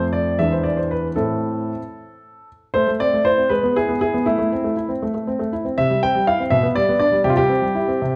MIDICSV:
0, 0, Header, 1, 2, 480
1, 0, Start_track
1, 0, Key_signature, 0, "minor"
1, 0, Tempo, 518135
1, 1089, Time_signature, 6, 3, 24, 8
1, 3013, Tempo, 500835
1, 7714, End_track
2, 0, Start_track
2, 0, Title_t, "Grand piano"
2, 0, Program_c, 0, 0
2, 0, Note_on_c, 0, 41, 45
2, 0, Note_on_c, 0, 57, 34
2, 0, Note_on_c, 0, 60, 32
2, 0, Note_on_c, 0, 69, 32
2, 117, Note_on_c, 0, 74, 58
2, 329, Note_off_c, 0, 57, 0
2, 331, Note_off_c, 0, 60, 0
2, 334, Note_off_c, 0, 69, 0
2, 345, Note_off_c, 0, 41, 0
2, 359, Note_on_c, 0, 76, 64
2, 362, Note_off_c, 0, 74, 0
2, 363, Note_on_c, 0, 56, 28
2, 365, Note_on_c, 0, 40, 38
2, 373, Note_on_c, 0, 62, 28
2, 373, Note_on_c, 0, 64, 28
2, 481, Note_on_c, 0, 72, 42
2, 483, Note_off_c, 0, 76, 0
2, 588, Note_on_c, 0, 74, 57
2, 604, Note_off_c, 0, 72, 0
2, 712, Note_on_c, 0, 72, 43
2, 718, Note_off_c, 0, 74, 0
2, 840, Note_off_c, 0, 72, 0
2, 842, Note_on_c, 0, 71, 52
2, 988, Note_off_c, 0, 71, 0
2, 1049, Note_off_c, 0, 56, 0
2, 1054, Note_off_c, 0, 62, 0
2, 1054, Note_off_c, 0, 64, 0
2, 1066, Note_off_c, 0, 40, 0
2, 1072, Note_on_c, 0, 69, 52
2, 1077, Note_on_c, 0, 60, 29
2, 1078, Note_on_c, 0, 64, 29
2, 1081, Note_on_c, 0, 45, 35
2, 1588, Note_off_c, 0, 45, 0
2, 1658, Note_off_c, 0, 60, 0
2, 1659, Note_off_c, 0, 64, 0
2, 2287, Note_off_c, 0, 69, 0
2, 2535, Note_on_c, 0, 72, 76
2, 2543, Note_on_c, 0, 57, 50
2, 2649, Note_off_c, 0, 57, 0
2, 2663, Note_on_c, 0, 57, 38
2, 2680, Note_off_c, 0, 72, 0
2, 2780, Note_on_c, 0, 74, 76
2, 2782, Note_on_c, 0, 60, 41
2, 2786, Note_off_c, 0, 57, 0
2, 2903, Note_on_c, 0, 57, 36
2, 2904, Note_off_c, 0, 60, 0
2, 2992, Note_off_c, 0, 74, 0
2, 3008, Note_on_c, 0, 72, 72
2, 3013, Note_on_c, 0, 64, 35
2, 3024, Note_off_c, 0, 57, 0
2, 3131, Note_on_c, 0, 60, 36
2, 3141, Note_off_c, 0, 64, 0
2, 3245, Note_on_c, 0, 71, 69
2, 3251, Note_on_c, 0, 56, 49
2, 3253, Note_off_c, 0, 72, 0
2, 3254, Note_off_c, 0, 60, 0
2, 3371, Note_off_c, 0, 56, 0
2, 3378, Note_on_c, 0, 59, 40
2, 3492, Note_off_c, 0, 71, 0
2, 3502, Note_on_c, 0, 68, 72
2, 3504, Note_off_c, 0, 59, 0
2, 3507, Note_on_c, 0, 64, 39
2, 3621, Note_on_c, 0, 59, 37
2, 3628, Note_off_c, 0, 64, 0
2, 3716, Note_off_c, 0, 68, 0
2, 3739, Note_on_c, 0, 64, 39
2, 3739, Note_on_c, 0, 68, 70
2, 3745, Note_off_c, 0, 59, 0
2, 3864, Note_off_c, 0, 64, 0
2, 3866, Note_on_c, 0, 59, 37
2, 3977, Note_on_c, 0, 64, 67
2, 3978, Note_off_c, 0, 68, 0
2, 3981, Note_off_c, 0, 59, 0
2, 3984, Note_on_c, 0, 57, 53
2, 4086, Note_off_c, 0, 57, 0
2, 4101, Note_on_c, 0, 57, 38
2, 4225, Note_off_c, 0, 57, 0
2, 4230, Note_on_c, 0, 60, 39
2, 4345, Note_on_c, 0, 57, 36
2, 4349, Note_off_c, 0, 60, 0
2, 4449, Note_off_c, 0, 64, 0
2, 4464, Note_on_c, 0, 64, 40
2, 4468, Note_off_c, 0, 57, 0
2, 4580, Note_on_c, 0, 60, 38
2, 4588, Note_off_c, 0, 64, 0
2, 4706, Note_off_c, 0, 60, 0
2, 4712, Note_on_c, 0, 57, 42
2, 4812, Note_off_c, 0, 57, 0
2, 4826, Note_on_c, 0, 57, 39
2, 4949, Note_off_c, 0, 57, 0
2, 4950, Note_on_c, 0, 60, 43
2, 5065, Note_on_c, 0, 57, 39
2, 5071, Note_off_c, 0, 60, 0
2, 5188, Note_off_c, 0, 57, 0
2, 5193, Note_on_c, 0, 64, 37
2, 5309, Note_on_c, 0, 60, 40
2, 5313, Note_off_c, 0, 64, 0
2, 5425, Note_off_c, 0, 60, 0
2, 5432, Note_on_c, 0, 76, 76
2, 5435, Note_on_c, 0, 48, 51
2, 5544, Note_off_c, 0, 48, 0
2, 5551, Note_on_c, 0, 55, 41
2, 5643, Note_off_c, 0, 76, 0
2, 5672, Note_off_c, 0, 55, 0
2, 5674, Note_on_c, 0, 79, 77
2, 5678, Note_on_c, 0, 60, 41
2, 5790, Note_on_c, 0, 55, 41
2, 5794, Note_off_c, 0, 60, 0
2, 5883, Note_off_c, 0, 79, 0
2, 5908, Note_on_c, 0, 77, 73
2, 5910, Note_off_c, 0, 55, 0
2, 5913, Note_on_c, 0, 64, 39
2, 6029, Note_on_c, 0, 60, 38
2, 6031, Note_off_c, 0, 64, 0
2, 6048, Note_off_c, 0, 77, 0
2, 6130, Note_on_c, 0, 76, 74
2, 6140, Note_on_c, 0, 47, 51
2, 6142, Note_off_c, 0, 60, 0
2, 6252, Note_on_c, 0, 59, 43
2, 6254, Note_off_c, 0, 47, 0
2, 6275, Note_off_c, 0, 76, 0
2, 6370, Note_on_c, 0, 74, 80
2, 6378, Note_on_c, 0, 55, 41
2, 6379, Note_off_c, 0, 59, 0
2, 6498, Note_on_c, 0, 59, 42
2, 6501, Note_off_c, 0, 55, 0
2, 6586, Note_off_c, 0, 74, 0
2, 6600, Note_on_c, 0, 74, 77
2, 6602, Note_on_c, 0, 62, 42
2, 6621, Note_off_c, 0, 59, 0
2, 6718, Note_on_c, 0, 55, 42
2, 6733, Note_off_c, 0, 62, 0
2, 6747, Note_off_c, 0, 74, 0
2, 6838, Note_on_c, 0, 67, 76
2, 6840, Note_on_c, 0, 48, 52
2, 6845, Note_off_c, 0, 55, 0
2, 6890, Note_on_c, 0, 65, 63
2, 6911, Note_off_c, 0, 67, 0
2, 6959, Note_on_c, 0, 67, 83
2, 6960, Note_on_c, 0, 55, 44
2, 6962, Note_off_c, 0, 48, 0
2, 6971, Note_off_c, 0, 65, 0
2, 7075, Note_on_c, 0, 60, 44
2, 7092, Note_off_c, 0, 55, 0
2, 7194, Note_on_c, 0, 55, 40
2, 7210, Note_off_c, 0, 60, 0
2, 7322, Note_on_c, 0, 64, 46
2, 7329, Note_off_c, 0, 55, 0
2, 7448, Note_on_c, 0, 60, 42
2, 7453, Note_off_c, 0, 64, 0
2, 7577, Note_off_c, 0, 60, 0
2, 7580, Note_on_c, 0, 48, 48
2, 7694, Note_off_c, 0, 48, 0
2, 7714, Note_off_c, 0, 67, 0
2, 7714, End_track
0, 0, End_of_file